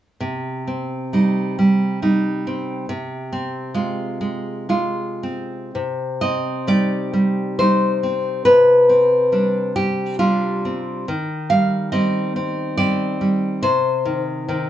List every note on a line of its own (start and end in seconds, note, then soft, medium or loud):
0.21 2.85 C3 soft
0.67 2.02 C4 soft
1.13 1.57 G3 soft
1.13 2.01 D#4 soft
1.59 2.01 G3 soft
2.02 2.85 G3 soft
2.02 2.85 D#4 soft
2.47 2.90 C4 soft
2.89 5.71 C3 medium
3.33 4.71 C4 soft
3.74 4.20 G#3 soft
3.74 4.68 F4 soft
4.21 4.68 G#3 soft
4.69 5.70 G#3 soft
4.69 5.70 F4 soft
5.23 5.75 C4 soft
5.75 8.42 C3 soft
6.21 7.59 C4 soft
6.21 6.66 D#5 medium
6.67 7.12 G3 soft
6.67 7.59 D#4 soft
6.67 7.55 D5 medium
7.13 7.58 G3 soft
7.59 8.43 G3 soft
7.59 8.43 D#4 soft
7.59 8.43 C5 medium
8.03 8.47 C4 soft
8.45 11.05 C3 soft
8.45 9.71 B4 medium
8.89 10.19 C4 soft
9.32 9.75 G3 soft
9.32 10.19 D4 soft
9.76 10.18 G3 soft
9.76 10.19 G4 medium
10.19 11.04 G3 soft
10.19 11.04 D4 soft
10.19 11.05 F4 medium
10.65 11.09 C4 soft
11.08 13.60 D#3 soft
11.50 11.91 G3 soft
11.50 11.91 F5 medium
11.92 12.77 G3 soft
11.92 12.35 C4 soft
11.92 12.75 D#5 medium
12.36 12.77 C4 soft
12.77 13.20 G3 soft
12.77 13.60 C4 soft
12.77 13.60 D5 medium
13.21 13.64 G3 soft
13.63 14.70 C3 medium
13.63 14.70 C5 medium
14.05 14.47 D#3 soft
14.48 14.70 D#3 soft
14.48 14.70 C4 soft